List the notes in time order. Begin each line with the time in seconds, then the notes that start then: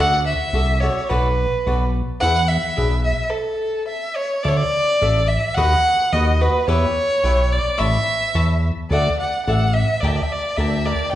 Already playing: D2 F#4
0.00 A4 D5 E5 F#5
0.26 E5
0.53 C2 F#4 A4 D5 E5
0.81 F#4 A4 C#5 D5 E5
1.09 B1 F#4 A4 B4 D5
1.66 B1 F#4 A4 B4 D5
2.21 E2 D4 G#4 B4 E5 F#5
2.48 E5
2.76 B1 D4 G#4 B4 E5
3.04 E5
3.31 A4
3.88 E5
4.16 C#5
4.43 D2 D4 A4 D5 E5
4.48 C#5
4.57 D5
5.01 A1 D4 A4 D5 E5
5.28 E5
5.55 D#2 F#4 B4 D#5 F#5
6.12 D#2 F#4 B4 D#5 F#5
6.41 F#4 B4 D#5 F#5
6.68 E2 G4 B4 C#5 E5 G5
7.24 B1 G4 B4 E5 G5
7.52 D5
7.78 A1 C#5 E5 A5 B5
8.35 E2 C#5 E5 A5 B5
8.90 D2 A4 D5 E5 F#5
9.20 F#5
9.46 A1 A4 D5 E5 F#5
9.73 E5
10.00 D2 A#4 D5 G5 A5
10.07 E5
10.16 D5
10.23 E5
10.32 D5
10.56 D2 A#4 D5 E5 G5 A5
10.86 A#4 D5 G5 A5
11.12 G5